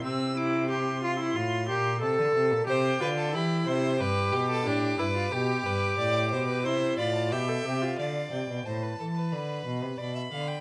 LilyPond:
<<
  \new Staff \with { instrumentName = "Violin" } { \time 4/4 \key c \mixolydian \tempo 4 = 90 e'''8 d'''8 c'''2 a''4 | g''4 b''8 c'''8 d'''2~ | d'''2 c'''8 b''16 a''16 g''4 | f''8 g''8 a''4 b''4 b''4 | }
  \new Staff \with { instrumentName = "Violin" } { \time 4/4 \key c \mixolydian r1 | c''8 b'16 a'16 g'8 c''8 b'8 g'16 a'16 g'8 b'8 | g'8 b'8 d''8 c''16 b'16 c''8 d''8 e''4 | d''4 c''16 b'16 a'16 b'4~ b'16 d''16 e''16 f''16 g''16 | }
  \new Staff \with { instrumentName = "Viola" } { \time 4/4 \key c \mixolydian c'8 e'8 g'8 f'16 e'16 f'8 g'8 a'4 | g'8 f'8 e'4 g'4 d'8 e'16 f'16 | g'2 e'8 f'8 g'16 a'16 g'16 f'16 | r1 | }
  \new Staff \with { instrumentName = "Cello" } { \clef bass \time 4/4 \key c \mixolydian c2 a,8 bes,8 c16 d16 c16 bes,16 | c8 d8 e8 c8 g,8 b,8 a,8 g,8 | b,8 g,8 a,8 b,8 c8 a,8 b,8 c8 | d8 c16 b,16 a,8 e8 d8 b,16 c16 b,8 d8 | }
>>